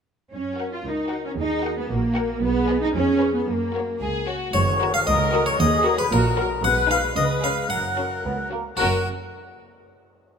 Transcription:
0.33 0.74 F#2 soft
0.33 0.69 C#4 medium
0.33 0.70 C#4 soft
0.59 0.78 F#4 soft
0.59 0.78 A#4 soft
0.59 0.79 F#5 soft
0.73 0.78 F4 soft
0.73 0.86 F4 medium
0.85 1.26 C#2 soft
0.85 1.24 D#4 soft
0.85 1.25 D#4 medium
0.85 1.34 A#4 medium
1.10 1.30 F#4 soft
1.10 1.30 A#4 soft
1.10 1.31 F#5 medium
1.25 1.30 C#4 soft
1.25 1.31 C#4 medium
1.37 1.78 D#2 medium
1.37 1.76 D#4 medium
1.37 1.89 G#4 medium
1.63 1.83 F#4 medium
1.63 1.82 A#4 medium
1.63 1.84 F#5 medium
1.77 1.82 B3 medium
1.77 1.90 B3 medium
1.89 2.31 A#1 medium
1.89 2.42 A#3 medium
1.89 2.41 A#3 medium
1.89 2.02 F#4 medium
2.16 2.35 F#4 medium
2.16 2.28 A#4 medium
2.16 2.36 A#4 medium
2.16 2.35 F#5 medium
2.42 2.83 B1 medium
2.42 2.81 B3 medium
2.42 2.93 G#4 medium
2.68 2.88 G#4 medium
2.68 2.88 B4 medium
2.68 2.88 D#5 medium
2.82 2.94 D#4 medium
2.82 2.88 D#4 medium
2.94 3.36 F2 medium
2.94 3.34 C#4 medium
2.94 3.47 G#4 medium
3.19 3.40 G#4 medium
3.19 3.40 B4 medium
3.19 3.41 C#5 medium
3.34 3.39 B3 medium
3.34 3.48 B3 medium
3.47 3.90 F#2 medium
3.47 4.00 A#3 soft
3.47 4.01 A#3 medium
3.47 4.26 A#4 soft
3.74 3.94 F#4 soft
3.74 3.94 A#4 soft
3.74 3.95 C#5 soft
4.01 4.43 C#2 medium
4.01 4.26 G#4 medium
4.27 4.54 F#4 soft
4.27 4.48 C#5 soft
4.53 4.96 F#1 medium
4.53 4.96 F#2 loud
4.53 4.91 C#5 medium
4.53 4.91 C#6 loud
4.53 tam-tam medium
4.80 4.90 F#3 medium
4.80 5.00 F#4 medium
4.80 4.90 A#4 medium
4.80 5.00 A#4 medium
4.80 5.01 A#4 medium
4.94 5.06 F5 medium
4.94 5.00 F5 medium
4.94 5.01 F6 medium
5.07 5.49 C#2 medium
5.07 5.56 A#4 medium
5.07 5.45 D#5 medium
5.07 5.44 D#5 medium
5.07 5.46 D#6 medium
5.32 5.43 F#3 medium
5.32 5.52 F#4 medium
5.32 5.52 A#4 medium
5.32 5.43 A#4 medium
5.32 5.53 A#4 medium
5.46 5.61 C#5 medium
5.46 5.58 C#5 medium
5.46 5.60 C#6 medium
5.59 6.01 D#2 medium
5.59 6.11 G#4 medium
5.59 5.98 D#5 medium
5.59 5.96 D#5 loud
5.59 5.98 D#6 loud
5.84 5.96 F#3 medium
5.84 6.04 F#4 medium
5.84 6.04 A#4 medium
5.84 5.95 A#4 medium
5.84 6.05 A#4 medium
5.98 6.04 B4 medium
5.98 6.11 B4 medium
5.98 6.12 B5 medium
6.11 6.53 A#1 medium
6.11 6.53 A#2 medium
6.11 6.38 F#4 medium
6.11 6.63 A#4 medium
6.11 6.61 A#4 medium
6.11 6.64 A#5 medium
6.37 6.47 F#3 medium
6.37 6.57 F#4 medium
6.37 6.47 A#4 medium
6.37 6.57 A#4 medium
6.37 6.46 A#4 medium
6.37 6.58 A#4 medium
6.64 7.06 B1 medium
6.64 7.06 B2 medium
6.64 7.13 G#3 medium
6.64 7.13 B4 medium
6.64 7.16 B4 medium
6.64 6.89 F#5 medium
6.64 6.76 F#5 medium
6.64 6.90 F#6 loud
6.89 7.09 D#4 medium
6.89 7.09 G#4 medium
6.89 7.11 B4 medium
6.89 7.15 F5 medium
6.89 7.03 F5 medium
6.89 6.97 F6 medium
7.16 7.59 C#2 medium
7.16 7.59 C#3 medium
7.16 7.69 G#3 medium
7.16 7.69 B4 medium
7.16 7.70 B4 medium
7.16 7.41 D#5 medium
7.16 7.29 D#5 medium
7.16 7.23 D#6 medium
7.43 7.64 C#4 medium
7.43 7.64 G#4 medium
7.43 7.65 B4 medium
7.43 7.69 F5 medium
7.43 7.70 F5 medium
7.43 7.70 F6 medium
7.70 8.13 F#1 medium
7.70 8.13 F#2 medium
7.70 8.49 F#3 soft
7.70 8.49 A#4 soft
7.70 8.50 A#4 soft
7.70 8.47 F#5 medium
7.70 8.51 F#5 medium
7.70 8.51 F#6 medium
7.97 8.17 C#4 soft
7.97 8.18 F#4 soft
7.97 8.19 A#4 soft
8.24 8.67 C#2 soft
8.24 8.67 C#2 medium
8.24 8.38 B3 medium
8.51 8.64 A#3 soft
8.51 8.71 C#4 soft
8.51 8.71 F#4 soft
8.51 8.72 A#4 soft
8.77 9.07 F#1 medium
8.77 9.07 F#2 medium
8.77 8.99 F#3 soft
8.77 9.07 C#4 soft
8.77 9.07 F#4 medium
8.77 9.00 F#4 medium
8.77 9.08 F#4 soft
8.77 9.07 A#4 medium
8.77 9.00 A#4 soft
8.77 9.07 F#6 medium

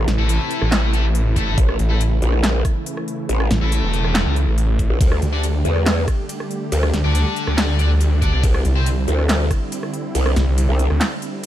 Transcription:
0.00 1.54 C3 medium
0.00 1.54 E3 medium
0.00 8.39 A3 medium
0.00 4.97 E4 medium
0.08 0.17 A1 medium
0.08 snare medium
0.08 closed hi-hat medium
0.18 0.38 A1 loud
0.18 0.91 A3 medium
0.18 0.91 E4 medium
0.18 0.91 A4 loud
0.29 closed hi-hat medium
0.51 closed hi-hat medium
0.62 1.46 A1 loud
0.62 cross-stick soft
0.72 snare loud
0.72 clap medium
0.72 closed hi-hat medium
0.93 1.04 A3 loud
0.93 1.04 E4 medium
0.93 1.04 A4 loud
0.93 closed hi-hat medium
1.15 closed hi-hat medium
1.36 1.46 A3 medium
1.36 1.46 E4 medium
1.36 1.46 A4 loud
1.36 kick medium
1.36 closed hi-hat medium
1.47 1.56 G1 loud
1.47 1.57 A3 medium
1.47 1.56 E4 medium
1.47 1.57 A4 loud
1.58 1.78 A1 loud
1.58 4.97 C#3 medium
1.58 4.97 E3 medium
1.58 kick loud
1.58 closed hi-hat medium
1.69 cross-stick medium
1.79 2.20 A1 loud
1.79 closed hi-hat medium
1.90 2.00 A3 medium
1.90 2.00 E4 medium
1.90 2.00 A4 medium
2.01 closed hi-hat medium
2.22 2.63 A#1 loud
2.22 closed hi-hat medium
2.33 cross-stick medium
2.44 snare loud
2.44 clap medium
2.44 closed hi-hat medium
2.65 kick medium
2.65 cross-stick medium
2.65 closed hi-hat medium
2.86 closed hi-hat medium
2.97 cross-stick medium
3.08 closed hi-hat soft
3.29 3.49 A1 loud
3.29 closed hi-hat medium
3.40 cross-stick medium
3.51 3.60 A1 loud
3.51 snare medium
3.51 closed hi-hat medium
3.61 3.81 A1 loud
3.61 4.34 A3 medium
3.61 4.34 E4 medium
3.61 4.34 A4 loud
3.72 closed hi-hat medium
3.83 4.24 E1 medium
3.93 closed hi-hat medium
4.04 cross-stick medium
4.15 snare loud
4.15 clap medium
4.15 closed hi-hat medium
4.26 4.46 C#2 medium
4.36 closed hi-hat medium
4.47 4.88 A1 loud
4.58 closed hi-hat medium
4.79 kick medium
4.79 closed hi-hat soft
4.90 4.99 A#1 loud
5.01 5.20 D2 loud
5.01 8.40 D3 medium
5.01 11.46 G3 medium
5.01 8.40 G4 medium
5.01 kick loud
5.01 closed hi-hat medium
5.01 ride medium
5.12 cross-stick medium
5.22 5.63 D2 loud
5.22 closed hi-hat medium
5.33 5.43 D4 medium
5.33 5.43 A4 medium
5.33 5.43 D5 loud
5.43 closed hi-hat medium
5.43 ride soft
5.65 6.06 E2 loud
5.65 closed hi-hat soft
5.76 cross-stick medium
5.86 snare loud
5.86 clap medium
5.86 closed hi-hat medium
5.86 ride medium
6.08 kick medium
6.08 cross-stick medium
6.08 closed hi-hat medium
6.29 closed hi-hat medium
6.29 ride soft
6.40 cross-stick medium
6.51 closed hi-hat soft
6.72 6.92 D2 loud
6.72 closed hi-hat medium
6.72 ride medium
6.83 cross-stick medium
6.93 7.03 D2 loud
6.93 snare medium
6.93 closed hi-hat medium
7.04 7.24 D2 loud
7.04 7.77 D4 medium
7.04 7.77 A4 medium
7.04 7.77 D5 loud
7.15 closed hi-hat medium
7.15 ride soft
7.36 closed hi-hat soft
7.47 8.31 D2 loud
7.47 cross-stick medium
7.58 snare loud
7.58 clap medium
7.58 closed hi-hat medium
7.58 ride medium
7.79 7.90 D4 medium
7.79 7.90 A4 medium
7.79 7.90 D5 loud
7.79 closed hi-hat medium
8.01 closed hi-hat medium
8.01 ride soft
8.22 8.31 D4 medium
8.22 8.31 A4 medium
8.22 8.31 D5 loud
8.22 kick medium
8.22 closed hi-hat medium
8.33 8.42 C2 loud
8.33 8.42 D4 medium
8.33 8.42 A4 loud
8.33 8.42 D5 loud
8.43 8.63 C2 loud
8.43 11.46 D3 medium
8.43 11.46 C4 medium
8.43 11.46 E4 medium
8.43 kick loud
8.43 closed hi-hat medium
8.43 ride medium
8.54 cross-stick medium
8.65 9.06 C2 medium
8.65 closed hi-hat medium
8.76 8.86 C4 medium
8.76 8.86 G4 medium
8.76 8.86 C5 medium
8.86 closed hi-hat medium
8.86 ride medium
9.08 9.49 D2 loud
9.08 closed hi-hat medium
9.19 cross-stick medium
9.29 snare loud
9.29 clap medium
9.29 closed hi-hat medium
9.29 ride medium
9.51 kick medium
9.51 cross-stick medium
9.51 closed hi-hat medium
9.72 closed hi-hat medium
9.72 ride soft
9.83 cross-stick medium
9.94 closed hi-hat medium
10.15 10.35 C2 loud
10.15 closed hi-hat medium
10.15 ride medium
10.26 cross-stick medium
10.36 10.46 C2 loud
10.36 snare medium
10.36 closed hi-hat medium
10.47 10.67 C2 loud
10.58 closed hi-hat medium
10.58 ride soft
10.69 10.88 C2 medium
10.79 closed hi-hat medium
10.90 11.01 D2 loud
10.90 cross-stick soft
11.01 snare loud
11.01 clap medium
11.01 closed hi-hat medium
11.01 ride medium
11.22 closed hi-hat medium

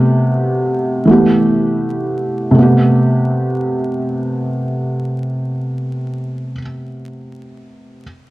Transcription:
0.00 1.04 C3 medium
0.00 1.04 A3 medium
0.00 1.06 B3 medium
0.00 1.06 G4 medium
1.05 2.52 E3 medium
1.05 2.53 A3 medium
1.09 2.54 B3 medium
1.09 2.55 G4 medium
2.51 6.51 C3 medium
2.51 6.54 A3 medium
2.58 6.58 B3 medium
2.58 6.62 G4 medium

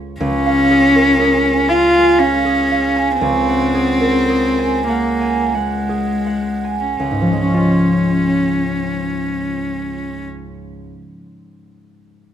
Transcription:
0.00 0.19 C#2 soft
0.00 0.69 G#4 soft
0.00 0.45 F5 soft
0.00 1.02 C#6 soft
0.20 3.20 C#2 soft
0.20 1.70 C#4 medium
0.46 1.69 F5 soft
0.71 1.19 G#4 soft
0.95 1.37 A#4 soft
1.21 2.44 G#4 soft
1.45 1.92 G#5 soft
1.68 2.20 F4 medium
1.68 2.18 F5 soft
1.94 2.95 G#5 soft
2.18 3.19 C#4 medium
2.18 2.70 F5 soft
2.45 3.73 G#4 soft
2.71 3.26 F5 soft
2.96 4.57 G#5 soft
3.20 6.98 C#2 soft
3.20 4.85 C4 medium
3.48 4.88 F#5 soft
3.74 4.28 G#4 soft
4.01 4.50 A#4 soft
4.29 5.88 G#4 soft
4.59 5.20 G#5 soft
4.88 5.56 A#3 soft
4.88 5.54 F#5 soft
5.21 6.63 G#5 soft
5.54 6.96 G#3 soft
5.54 6.25 F#5 soft
5.89 9.79 G#4 soft
6.26 7.05 F#5 soft
6.64 10.54 G#5 soft
6.96 10.90 C#2 soft
6.96 10.22 C#4 soft
7.11 11.01 G#2 soft
7.22 11.04 F3 soft
7.32 10.77 G#3 soft
7.43 10.69 C#4 soft
7.54 10.79 F4 soft

